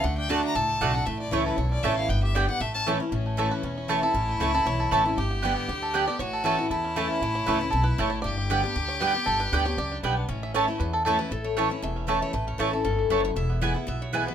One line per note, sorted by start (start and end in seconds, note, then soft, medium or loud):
0.00 0.41 D2 loud
0.00 0.28 D3 medium
0.00 0.55 A4 medium
0.00 0.17 F#5 medium
0.04 0.29 A3 medium
0.18 0.43 D4 medium
0.18 0.32 G5 loud
0.29 0.54 D3 medium
0.29 0.54 A3 loud
0.29 0.40 A3 loud
0.29 0.67 A3 medium
0.29 0.55 D4 loud
0.29 0.55 F#4 loud
0.29 0.40 F#4 medium
0.29 0.40 D5 loud
0.29 0.44 A5 medium
0.29 0.40 A5 loud
0.44 0.79 D4 medium
0.44 0.57 A#5 loud
0.55 0.77 C#2 medium
0.55 1.04 A2 medium
0.55 0.92 A4 medium
0.55 0.96 A5 loud
0.69 1.04 A3 medium
0.81 1.03 B1 medium
0.81 0.94 D3 medium
0.81 0.91 A3 loud
0.81 0.95 A3 loud
0.81 0.94 D4 loud
0.81 1.07 F#4 medium
0.81 0.91 F#4 medium
0.81 0.93 F#4 loud
0.81 0.91 D5 loud
0.81 0.91 A5 loud
0.94 1.07 D4 medium
0.94 1.06 F#4 medium
0.94 1.07 A4 medium
0.94 1.07 F#5 loud
1.06 1.25 A1 medium
1.06 1.56 A2 medium
1.06 1.31 A3 medium
1.06 1.19 E5 loud
1.19 1.56 E4 medium
1.19 1.34 D5 loud
1.31 1.54 C#2 medium
1.31 1.56 E3 medium
1.31 1.57 A3 medium
1.31 1.69 A3 medium
1.31 1.42 A3 medium
1.31 1.57 C#4 loud
1.31 1.42 E4 loud
1.31 1.57 E4 loud
1.31 1.44 C#5 loud
1.31 1.43 C#5 loud
1.31 1.43 A5 loud
1.45 1.81 A4 medium
1.45 1.58 B4 medium
1.57 1.80 B1 medium
1.57 2.07 E2 medium
1.57 1.95 E4 medium
1.57 1.70 C#5 medium
1.71 2.07 C#4 medium
1.71 1.85 D5 loud
1.83 2.06 A1 medium
1.83 2.08 E3 medium
1.83 1.93 A3 loud
1.83 2.08 A3 medium
1.83 2.08 A3 loud
1.83 2.09 C#4 loud
1.83 1.94 E4 loud
1.83 2.09 E4 loud
1.83 1.94 C#5 loud
1.83 1.95 E5 loud
1.83 1.94 A5 loud
1.96 2.10 E4 medium
1.96 2.11 F5 loud
2.09 2.46 G1 loud
2.09 2.59 G2 loud
2.09 2.34 B3 medium
2.09 2.23 G5 loud
2.23 2.48 G4 medium
2.23 2.36 E5 loud
2.35 2.48 D3 loud
2.35 2.49 G3 loud
2.35 2.45 B3 medium
2.35 2.61 B3 medium
2.35 2.49 B3 loud
2.35 2.45 G4 medium
2.35 2.47 G4 loud
2.35 2.48 D5 loud
2.35 2.45 D5 loud
2.35 2.45 G5 loud
2.48 2.61 B3 medium
2.48 2.60 G4 medium
2.48 2.61 G4 medium
2.48 2.62 F#5 loud
2.60 2.98 A1 medium
2.60 3.10 A2 medium
2.60 2.85 A3 medium
2.60 2.74 E5 loud
2.74 2.99 C#4 medium
2.74 2.82 A5 loud
2.86 3.00 E3 loud
2.86 2.96 A3 medium
2.86 3.12 A3 medium
2.86 3.00 A3 medium
2.86 3.00 C#4 loud
2.86 2.96 E4 loud
2.86 2.99 E4 loud
2.86 2.97 C#5 loud
2.86 2.97 A5 loud
3.00 3.11 C#4 medium
3.00 3.13 C#4 medium
3.00 3.12 E4 medium
3.12 3.49 A1 medium
3.12 3.61 A2 medium
3.12 3.90 C#4 medium
3.12 3.49 C#4 medium
3.26 3.61 A3 medium
3.37 3.62 E3 loud
3.37 3.47 A3 medium
3.37 3.62 A3 medium
3.37 3.63 C#4 medium
3.37 3.48 E4 medium
3.37 3.63 E4 medium
3.37 3.52 A4 medium
3.37 3.48 C#5 medium
3.37 3.48 A5 loud
3.51 3.77 B4 loud
3.63 4.00 E1 medium
3.63 4.12 E2 medium
3.63 4.00 C#4 medium
3.78 4.13 E4 medium
3.88 4.02 E3 medium
3.88 3.99 A3 loud
3.88 4.02 A3 medium
3.88 4.02 C#4 loud
3.88 5.17 E4 loud
3.88 3.99 E4 loud
3.88 4.01 E4 medium
3.88 4.02 A4 medium
3.88 3.99 C#5 loud
3.88 3.99 A5 loud
4.03 4.15 C#4 medium
4.03 4.14 E4 medium
4.03 4.38 A4 loud
4.14 4.33 A1 medium
4.14 4.63 A2 medium
4.14 4.51 C#4 medium
4.28 4.64 A3 medium
4.40 4.62 C#2 medium
4.40 4.54 E3 medium
4.40 4.50 A3 medium
4.40 4.54 A3 medium
4.40 4.54 C#4 medium
4.40 4.66 E4 medium
4.40 4.50 E4 loud
4.40 4.53 E4 loud
4.40 4.50 C#5 loud
4.40 4.50 A5 loud
4.54 4.66 C#4 medium
4.54 4.65 E4 medium
4.54 4.65 A4 loud
4.66 4.88 B1 medium
4.66 5.15 E2 loud
4.66 4.90 C#5 loud
4.80 4.91 A4 medium
4.91 5.13 A1 medium
4.91 5.05 E3 medium
4.91 5.01 A3 loud
4.91 5.05 A3 medium
4.91 5.06 C#4 medium
4.91 5.01 E4 loud
4.91 5.04 E4 loud
4.91 5.18 A4 loud
4.91 5.01 C#5 loud
4.91 5.02 A5 loud
5.05 5.18 C#4 medium
5.05 5.17 E4 medium
5.17 5.54 G1 medium
5.17 5.66 G2 medium
5.17 5.41 G4 medium
5.17 6.22 G4 loud
5.31 5.55 B3 medium
5.42 5.68 D3 medium
5.42 5.68 G3 loud
5.42 5.52 B3 medium
5.42 5.68 B3 loud
5.42 5.52 G4 loud
5.42 5.67 G4 medium
5.42 5.69 G4 loud
5.42 5.53 D5 medium
5.42 5.53 G5 medium
5.56 5.92 B3 medium
5.68 6.05 D2 medium
5.68 5.93 D3 medium
5.68 6.05 G4 medium
5.82 6.17 A4 medium
5.94 6.07 D3 medium
5.94 6.07 G3 medium
5.94 6.03 B3 medium
5.94 6.20 B3 medium
5.94 6.08 B3 medium
5.94 6.04 G4 loud
5.94 6.06 G4 loud
5.94 6.04 D5 loud
5.94 6.04 G5 loud
6.07 6.20 B3 medium
6.07 6.19 G4 medium
6.07 6.19 D5 loud
6.19 6.56 A1 medium
6.19 6.69 A2 loud
6.19 6.70 F#4 loud
6.19 6.46 C#5 loud
6.33 6.43 A4 medium
6.44 6.58 E3 medium
6.44 6.55 A3 loud
6.44 6.58 A3 medium
6.44 6.59 C#4 loud
6.44 6.55 E4 loud
6.44 6.58 E4 loud
6.44 6.69 A4 medium
6.44 6.55 C#5 loud
6.44 6.55 A5 loud
6.59 6.71 C#4 medium
6.59 6.94 E4 medium
6.59 6.70 E4 medium
6.70 7.08 E2 medium
6.70 7.20 E2 medium
6.70 8.20 E4 loud
6.70 7.07 A4 medium
6.84 7.09 C#4 medium
6.96 7.21 E3 medium
6.96 7.21 A3 medium
6.96 7.06 A3 loud
6.96 7.21 A3 loud
6.96 7.21 C#4 loud
6.96 7.06 E4 medium
6.96 7.22 E4 medium
6.96 7.06 C#5 loud
6.96 7.06 A5 loud
7.10 7.45 C#4 medium
7.21 7.40 A1 medium
7.21 7.71 A2 medium
7.21 7.58 A3 medium
7.35 7.46 C#5 medium
7.46 7.69 C#2 medium
7.46 7.60 E3 loud
7.46 7.57 A3 medium
7.46 7.61 A3 medium
7.46 7.61 C#4 loud
7.46 7.57 E4 loud
7.46 7.60 E4 loud
7.46 7.71 B4 medium
7.46 7.57 C#5 loud
7.46 7.57 A5 loud
7.61 7.74 C#4 medium
7.61 7.73 E4 medium
7.61 7.96 E4 medium
7.71 7.95 B1 medium
7.71 7.97 B2 medium
7.71 7.84 A4 medium
7.84 8.12 B4 medium
7.98 8.20 A1 medium
7.98 8.23 A2 loud
7.98 8.24 A3 medium
7.98 8.08 A3 loud
7.98 8.08 E4 loud
7.98 8.09 C#5 loud
7.98 8.09 A5 loud
8.10 8.21 C#5 loud
8.22 8.62 G1 loud
8.22 8.73 G2 loud
8.22 9.99 G4 loud
8.22 8.37 D5 loud
8.38 8.73 G4 medium
8.50 8.63 D3 loud
8.50 8.63 G3 medium
8.50 8.60 B3 loud
8.50 8.87 B3 medium
8.50 8.64 B3 loud
8.50 8.60 G4 loud
8.50 8.62 G4 medium
8.50 8.60 D5 loud
8.50 8.60 G5 loud
8.64 8.76 B3 medium
8.64 8.99 D4 medium
8.64 8.75 G4 medium
8.75 9.13 D2 medium
8.75 8.99 D3 medium
8.75 8.88 G4 medium
8.88 9.00 C#5 loud
9.00 9.14 D3 medium
9.00 9.14 G3 medium
9.00 9.11 B3 loud
9.00 9.15 B3 loud
9.00 9.11 G4 loud
9.00 9.13 G4 loud
9.00 9.27 B4 medium
9.00 9.11 D5 loud
9.00 9.11 G5 loud
9.14 9.27 B3 medium
9.14 9.26 G4 medium
9.14 9.40 G4 medium
9.26 9.45 G1 loud
9.26 9.76 G2 medium
9.26 9.40 A4 loud
9.40 9.64 B4 loud
9.52 9.74 D2 medium
9.52 9.66 D3 medium
9.52 9.66 G3 medium
9.52 9.62 B3 medium
9.52 9.66 B3 loud
9.52 9.89 D4 medium
9.52 9.62 G4 loud
9.52 9.65 G4 loud
9.52 9.62 D5 loud
9.52 9.63 G5 loud
9.65 9.78 B3 medium
9.65 9.77 G4 medium
9.65 9.77 C#5 loud
9.77 9.99 C#2 medium
9.77 10.03 F#2 medium
9.77 10.02 D5 loud
9.92 10.16 D4 medium
10.03 10.25 B1 medium
10.03 10.28 G2 loud
10.03 10.30 B3 medium
10.03 10.13 B3 medium
10.03 10.29 B3 medium
10.03 10.13 G4 medium
10.03 10.13 D5 loud
10.03 10.14 G5 loud
10.17 10.28 D4 medium
10.28 10.66 A1 loud
10.28 10.78 A2 medium
10.28 11.19 C#4 medium
10.28 10.65 C#4 medium
10.43 10.54 E5 loud
10.54 10.68 E3 loud
10.54 10.64 A3 medium
10.54 10.68 A3 loud
10.54 10.68 C#4 loud
10.54 10.64 E4 medium
10.54 10.67 E4 loud
10.54 10.78 C#5 loud
10.54 10.65 C#5 loud
10.54 10.65 A5 loud
10.68 11.03 A3 medium
10.68 10.81 C#4 medium
10.68 10.80 E4 medium
10.80 11.17 E2 medium
10.80 11.29 E2 medium
10.80 10.93 B4 loud
10.93 11.04 A4 medium
11.05 11.30 E3 loud
11.05 11.15 A3 medium
11.05 11.31 A3 loud
11.05 11.31 C#4 loud
11.05 11.16 E4 loud
11.05 11.31 E4 loud
11.05 11.18 A4 medium
11.05 11.16 C#5 loud
11.05 11.16 A5 loud
11.19 11.30 E4 medium
11.19 11.32 B4 loud
11.31 11.68 A1 medium
11.31 11.80 A2 medium
11.31 11.70 E4 medium
11.31 11.46 A4 medium
11.44 11.80 A3 medium
11.44 11.55 C#5 medium
11.56 11.70 E3 medium
11.56 11.66 A3 medium
11.56 11.70 A3 medium
11.56 11.94 C#4 medium
11.56 11.71 C#4 loud
11.56 11.67 E4 medium
11.56 11.69 E4 medium
11.56 11.70 C#5 medium
11.56 11.67 C#5 medium
11.56 11.67 A5 loud
11.70 11.83 C#4 medium
11.70 11.82 E4 medium
11.70 12.59 E4 medium
11.70 11.82 C#5 medium
11.82 12.20 E1 medium
11.82 12.31 E2 medium
11.82 12.19 A3 medium
11.82 12.20 E5 loud
11.96 12.31 C#4 medium
12.07 12.32 E3 medium
12.07 12.32 A3 loud
12.07 12.18 A3 medium
12.07 12.33 C#4 medium
12.07 12.18 E4 loud
12.07 12.33 E4 loud
12.07 12.45 A4 medium
12.07 12.18 C#5 loud
12.07 12.18 A5 loud
12.22 12.33 A3 medium
12.22 12.33 C#5 loud
12.33 12.52 A1 medium
12.33 12.82 A2 medium
12.33 12.70 A3 medium
12.33 12.47 B4 loud
12.47 12.83 C#4 medium
12.47 12.59 C#5 medium
12.58 12.81 A1 medium
12.58 12.72 E3 medium
12.58 12.72 A3 medium
12.58 12.69 A3 loud
12.58 12.73 C#4 loud
12.58 12.69 E4 medium
12.58 12.98 E4 medium
12.58 12.72 E4 loud
12.58 12.83 A4 medium
12.58 12.69 C#5 loud
12.58 12.70 A5 loud
12.73 12.86 C#4 medium
12.73 12.85 E4 medium
12.73 13.09 A4 medium
12.84 13.07 G1 medium
12.84 13.09 G2 medium
12.84 13.22 C#4 medium
12.84 13.09 A4 loud
12.99 13.23 E4 medium
13.10 13.32 F#1 medium
13.10 13.35 F#2 medium
13.10 13.36 A3 medium
13.10 13.20 A3 medium
13.10 13.21 E4 loud
13.10 13.20 B4 loud
13.10 13.21 C#5 loud
13.10 13.21 A5 loud
13.20 13.36 E4 medium
13.20 13.24 C5 medium
13.25 13.30 C#5 loud
13.36 13.73 E1 loud
13.36 13.85 E2 medium
13.36 13.62 E4 medium
13.36 13.60 E5 loud
13.50 13.85 B3 medium
13.61 13.75 E3 medium
13.61 13.75 G#3 medium
13.61 13.71 B3 medium
13.61 13.75 B3 loud
13.61 13.72 E4 loud
13.61 13.76 E4 medium
13.61 13.73 E4 loud
13.61 13.72 B4 medium
13.61 13.86 F#5 loud
13.61 13.72 G#5 loud
13.74 13.88 B3 medium
13.74 13.87 E4 medium
13.74 14.02 E4 medium
13.87 14.25 B1 medium
13.87 14.35 B2 medium
13.87 14.25 B3 medium
13.87 14.01 E5 loud
14.02 14.13 E4 medium
14.02 14.14 C#5 medium
14.13 14.35 E3 medium
14.13 14.35 G#3 medium
14.13 14.23 B3 loud
14.13 14.35 B3 loud
14.13 14.35 E4 medium
14.13 14.23 E4 loud
14.13 14.35 E4 medium
14.13 14.23 B4 medium
14.13 14.27 B4 loud
14.13 14.23 G#5 loud
14.27 14.35 B3 medium
14.27 14.35 B4 loud